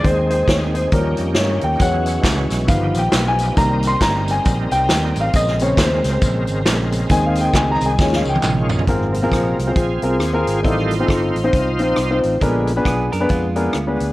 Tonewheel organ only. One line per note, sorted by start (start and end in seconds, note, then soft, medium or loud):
0.00 0.91 D#3 medium
0.00 0.91 G#3 medium
0.00 0.89 C4 medium
0.00 0.89 G#4 medium
0.92 1.80 D#3 medium
0.92 1.80 A#3 medium
0.92 2.68 C#4 medium
0.92 1.80 G4 medium
1.79 2.67 E3 medium
1.79 2.68 G#3 medium
1.79 2.68 F#4 medium
2.67 3.56 F3 medium
2.67 3.56 B3 medium
2.67 5.31 D#4 medium
2.67 3.56 G4 medium
3.57 5.32 G3 medium
3.57 7.95 C4 medium
3.57 5.32 A#4 medium
5.34 7.09 C#3 medium
5.34 8.84 G#3 medium
5.34 7.09 A#4 medium
7.09 8.85 D#3 medium
7.09 7.97 G#4 medium
7.99 8.86 C#4 medium
7.99 8.86 F4 medium
9.13 9.72 C3 medium
9.13 9.72 F3 soft
9.13 9.72 A#3 soft
9.76 10.60 C4 medium
9.76 10.61 F4 medium
9.76 10.67 G#4 medium
10.63 10.95 D#3 medium
10.63 10.96 G3 soft
10.63 10.96 A3 medium
10.63 12.19 D#4 medium
10.63 12.19 F4 medium
10.63 12.19 C5 loud
12.41 12.73 D3 soft
12.41 12.73 G#3 soft
12.41 12.74 B3 medium